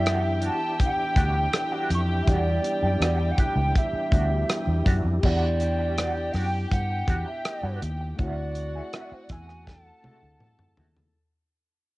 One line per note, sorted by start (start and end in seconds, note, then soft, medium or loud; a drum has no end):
0.00 0.48 F#2 medium
0.00 5.20 E3 medium
0.00 2.23 B3 medium
0.00 2.24 D4 medium
0.00 5.19 D4 medium
0.00 2.25 E4 medium
0.00 5.20 E4 medium
0.00 2.25 G4 medium
0.00 4.83 G4 medium
0.00 5.20 G4 medium
0.00 0.40 E5 medium
0.00 4.82 G5 medium
0.05 0.25 G3 medium
0.05 0.24 D4 medium
0.05 0.22 F#4 medium
0.05 cross-stick loud
0.05 closed hi-hat medium
0.41 0.58 G3 medium
0.41 0.59 D4 medium
0.41 0.59 F#4 medium
0.41 closed hi-hat medium
0.46 0.79 A5 medium
0.80 muted clean electric guitar stroke soft
0.80 kick medium
0.80 closed hi-hat medium
0.85 1.89 G5 medium
0.99 muted clean electric guitar stroke soft
1.16 1.47 D2 medium
1.16 1.37 G3 medium
1.16 1.35 D4 medium
1.16 1.34 F#4 medium
1.16 kick medium
1.16 closed hi-hat medium
1.35 muted clean electric guitar stroke soft
1.53 muted clean electric guitar stroke soft
1.53 cross-stick loud
1.53 closed hi-hat medium
1.72 1.89 G3 medium
1.72 1.90 D4 medium
1.72 1.91 F#4 medium
1.90 2.21 F2 medium
1.90 2.01 C#6 medium
1.90 muted clean electric guitar stroke soft
1.90 closed hi-hat medium
2.09 muted clean electric guitar stroke soft
2.22 4.07 G3 medium
2.22 2.32 E5 medium
2.27 2.58 E2 loud
2.27 2.47 G3 medium
2.27 4.08 B3 soft
2.27 2.48 D4 medium
2.27 4.10 D4 medium
2.27 2.49 F#4 medium
2.27 4.10 G4 medium
2.27 3.33 D5 medium
2.27 kick loud
2.27 closed hi-hat medium
2.64 muted clean electric guitar stroke soft
2.64 closed hi-hat medium
2.83 2.98 F#2 medium
2.83 3.00 G3 soft
2.83 3.00 D4 soft
2.83 2.99 G4 medium
3.00 3.31 E2 medium
3.00 3.21 G3 medium
3.00 3.19 D4 medium
3.00 3.18 F#4 medium
3.00 cross-stick loud
3.00 closed hi-hat medium
3.19 muted clean electric guitar stroke soft
3.31 3.41 F#5 medium
3.38 3.54 G3 medium
3.38 3.55 D4 medium
3.38 3.55 G4 medium
3.38 3.79 G5 medium
3.38 kick medium
3.38 closed hi-hat medium
3.56 3.71 C#2 medium
3.56 muted clean electric guitar stroke soft
3.76 4.88 E5 medium
3.76 muted clean electric guitar stroke soft
3.76 kick medium
3.76 closed hi-hat medium
3.93 muted fingered electric bass stroke soft
3.93 muted clean electric guitar stroke soft
4.11 4.43 D2 medium
4.11 5.22 G3 soft
4.11 4.33 G3 medium
4.11 5.21 B3 soft
4.11 5.23 D4 soft
4.11 4.32 D4 medium
4.11 4.19 F#4 soft
4.11 kick medium
4.11 closed hi-hat medium
4.15 4.31 F#4 medium
4.20 5.20 G4 soft
4.32 muted clean electric guitar stroke soft
4.49 muted clean electric guitar stroke soft
4.49 cross-stick loud
4.49 closed hi-hat medium
4.67 4.83 E2 medium
4.86 5.01 F#2 medium
4.86 5.02 G3 medium
4.86 5.03 D4 medium
4.86 5.03 F#4 medium
4.86 kick medium
4.86 closed hi-hat medium
5.04 5.20 F2 medium
5.04 muted clean electric guitar stroke soft
5.21 6.30 E2 loud
5.21 5.44 G3 medium
5.21 8.15 B3 medium
5.21 8.16 D4 medium
5.21 8.14 G4 medium
5.21 6.34 D5 medium
5.21 8.14 G5 medium
5.21 kick loud
5.21 crash medium
5.25 5.44 D4 medium
5.25 8.17 E4 medium
5.25 5.45 F#4 medium
5.60 muted clean electric guitar stroke soft
5.60 closed hi-hat medium
5.79 5.96 G3 soft
5.79 5.95 D4 soft
5.79 5.95 G4 medium
5.98 6.18 G3 medium
5.98 6.17 D4 medium
5.98 6.15 F#4 medium
5.98 cross-stick medium
5.98 closed hi-hat medium
6.16 muted clean electric guitar stroke soft
6.33 6.64 F#2 medium
6.33 6.50 G3 medium
6.33 6.51 D4 medium
6.33 6.51 F#4 medium
6.33 6.70 G5 loud
6.33 cross-stick soft
6.33 open hi-hat soft
6.54 muted clean electric guitar stroke soft
6.70 7.02 G2 loud
6.70 7.22 F#5 loud
6.70 muted clean electric guitar stroke soft
6.70 kick medium
6.70 closed hi-hat medium
6.90 muted clean electric guitar stroke soft
7.08 7.23 E2 medium
7.08 7.28 G3 medium
7.08 7.27 D4 medium
7.08 7.26 F#4 medium
7.08 kick medium
7.08 closed hi-hat medium
7.27 7.79 E5 medium
7.27 muted clean electric guitar stroke soft
7.45 muted clean electric guitar stroke soft
7.45 cross-stick loud
7.45 closed hi-hat medium
7.63 7.79 G2 medium
7.63 7.81 G3 medium
7.63 7.82 D4 medium
7.63 7.82 F#4 medium
7.82 8.12 D#2 medium
7.82 muted clean electric guitar stroke soft
7.82 closed hi-hat medium
8.01 muted clean electric guitar stroke soft
8.16 8.80 D2 loud
8.16 9.99 A3 medium
8.16 10.00 C4 medium
8.16 8.39 C4 medium
8.16 10.01 E4 medium
8.16 8.40 E4 medium
8.16 9.65 F#4 medium
8.16 9.64 F#5 medium
8.16 kick loud
8.16 closed hi-hat medium
8.21 8.40 F#4 medium
8.21 10.02 F#4 medium
8.21 8.98 D5 medium
8.55 muted clean electric guitar stroke soft
8.55 closed hi-hat medium
8.75 8.92 C4 soft
8.75 8.91 E4 soft
8.75 8.91 G#4 medium
8.93 9.13 C4 medium
8.93 9.13 E4 medium
8.93 9.11 F#4 medium
8.93 9.06 E5 medium
8.93 cross-stick loud
8.93 closed hi-hat medium
9.05 9.15 D5 medium
9.12 9.25 C5 medium
9.12 muted fingered electric bass stroke soft
9.12 muted clean electric guitar stroke soft
9.24 9.33 D5 medium
9.29 9.90 E2 medium
9.29 9.46 C4 soft
9.29 9.46 E4 medium
9.29 9.47 G#4 medium
9.29 9.71 G#5 loud
9.29 kick medium
9.29 closed hi-hat medium
9.49 muted clean electric guitar stroke soft
9.49 cross-stick soft
9.67 11.12 A4 medium
9.67 10.79 F#5 medium
9.67 11.12 A5 medium
9.67 muted clean electric guitar stroke soft
9.67 kick medium
9.67 snare soft
9.86 muted clean electric guitar stroke soft
10.02 11.14 A3 soft
10.02 11.15 C4 soft
10.02 10.24 C4 medium
10.02 11.15 E4 soft
10.02 10.23 E4 medium
10.02 10.11 G#4 soft
10.02 muted fingered electric bass stroke soft
10.02 high tom medium
10.06 10.22 F#4 medium
10.12 11.19 A4 medium
10.23 10.38 D2 medium
10.40 muted clean electric guitar stroke soft
10.40 mid tom medium
10.59 mid tom medium
10.77 11.09 D#2 medium
10.77 10.94 C4 medium
10.77 10.94 E4 medium
10.77 10.95 F#4 medium
10.77 floor tom medium
10.96 muted clean electric guitar stroke soft
10.96 floor tom medium